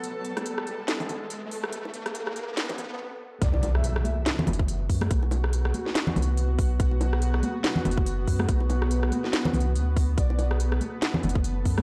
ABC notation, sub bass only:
X:1
M:4/4
L:1/8
Q:"Swing 16ths" 1/4=142
K:Bphr
V:1 name="Sub bass" clef=bass
z8 | z8 | B,,,3 z2 F,,,2 F,, | B,,,3 z2 C,,2 B,,, |
B,,,3 z2 F,,,2 F,, | B,,,3 z2 C,, D,,2 | B,,,3 z2 F,,,2 F,, |]